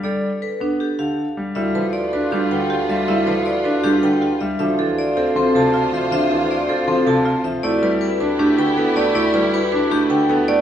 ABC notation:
X:1
M:4/4
L:1/8
Q:1/4=158
K:Gmix
V:1 name="Vibraphone"
d z B z G f z2 | e z d z G g z e | e z d z G g z e | e z d z A a z e |
e z d z A a z e | d z B z G g z d | d z B z G g z d |]
V:2 name="Marimba"
A z A D A G z2 | E B z B D B G z | E B z B D B G z | D A z A C A F z |
D A z A C A F z | E B z B D B A d | E B z B D B A d |]
V:3 name="String section"
z8 | [FB]8- | [FB]6- [FB] z | [Fc]8- |
[Fc]6- [Fc] z | [EG]8- | [EG]6- [EG] z |]
V:4 name="Soprano saxophone"
z8 | F8- | F6- F z | F8- |
F6- F z | G8- | G6- G z |]
V:5 name="Grand piano" clef=bass
G, z2 B, z D, z G, | G, F, z D G, D, z G, | G, F, z D G, D, z G, | F, E, z C F, C, z F, |
F, E, z C F, C, z F, | A, G, z D A, D, B, A, | A, G, z D A, D, B, A, |]
V:6 name="Bassoon" clef=bass
z8 | D,,8- | D,,8 | D,,8- |
D,,8 | D,,8- | D,,8 |]